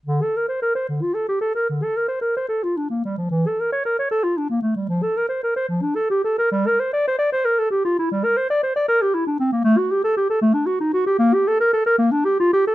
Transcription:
\new Staff \with { instrumentName = "Clarinet" } { \time 12/8 \key d \minor \tempo 4. = 75 d16 a'16 bes'16 c''16 bes'16 c''16 d16 f'16 a'16 g'16 a'16 bes'16 d16 a'16 bes'16 c''16 bes'16 c''16 a'16 f'16 d'16 bes16 g16 f16 | e16 a'16 bes'16 cis''16 bes'16 cis''16 a'16 f'16 d'16 bes16 a16 g16 f16 a'16 bes'16 c''16 bes'16 c''16 f16 d'16 a'16 g'16 a'16 bes'16 | g16 bes'16 c''16 d''16 c''16 d''16 c''16 bes'16 a'16 g'16 f'16 e'16 g16 bes'16 c''16 d''16 c''16 d''16 bes'16 g'16 e'16 d'16 c'16 bes16 | a16 fis'16 g'16 a'16 g'16 a'16 a16 d'16 fis'16 ees'16 fis'16 g'16 bes16 g'16 a'16 bes'16 a'16 bes'16 bes16 d'16 g'16 f'16 g'16 a'16 | }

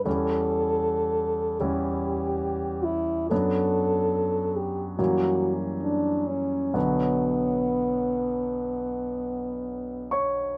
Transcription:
<<
  \new Staff \with { instrumentName = "French horn" } { \time 4/4 \key b \minor \tempo 4 = 70 a'2 g'4. e'8 | a'4. g'8 fis'8 r8 d'8 cis'8 | b2.~ b8 r8 | }
  \new Staff \with { instrumentName = "Grand piano" } { \time 4/4 \key b \minor r1 | r1 | r2. r8 <cis'' cis'''>8 | }
  \new Staff \with { instrumentName = "Grand piano" } { \clef bass \time 4/4 \key b \minor <e, g cis' e'>2 <e, g cis' e'>2 | <fis, fis b d'>2 <fis, e g ais>2 | <b,, d fis b>1 | }
>>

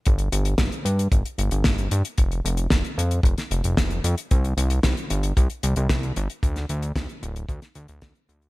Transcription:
<<
  \new Staff \with { instrumentName = "Analog synth bass" } { \clef bass \time 4/4 \key c \major \tempo 4 = 113 g,,8 g,,8 g,,16 r16 g,8 g,,16 r16 g,,16 g,,16 g,,8 g,16 r16 | f,,8 f,,8 f,,16 r16 f,8 f,,16 r16 f,,16 f,,16 f,,8 f,16 r16 | c,8 c,8 c,16 r16 g,,8 c,16 r16 c,16 c,16 c,8 g,,16 r16 | d,8 d,8 d,16 r16 d,,8 d,16 r16 d,16 d,16 d,16 r16 d,8 | }
  \new DrumStaff \with { instrumentName = "Drums" } \drummode { \time 4/4 <hh bd>16 hh16 hh16 hh16 <hh bd sn>16 hh16 hh16 hh16 <hh bd>16 hh16 hh16 hh16 <hh bd sn>16 hh16 hh16 hh16 | <hh bd>16 hh16 hh16 hh16 <hh bd sn>16 hh16 hh16 hh16 <hh bd>16 <hh sn>16 hh16 hh16 <hh bd sn>16 hh16 hh16 hh16 | <hh bd>16 hh16 hh16 hh16 <hh bd sn>16 hh16 hh16 hh16 <hh bd>16 hh16 hh16 hh16 <hh bd sn>16 hh16 hh16 hh16 | <hh bd>16 <hh sn>16 hh16 hh16 <hh bd sn>16 hh16 hh16 hh16 <hh bd>16 <hh sn>16 hh16 hh16 <hh bd sn>16 hh16 hh16 hh16 | }
>>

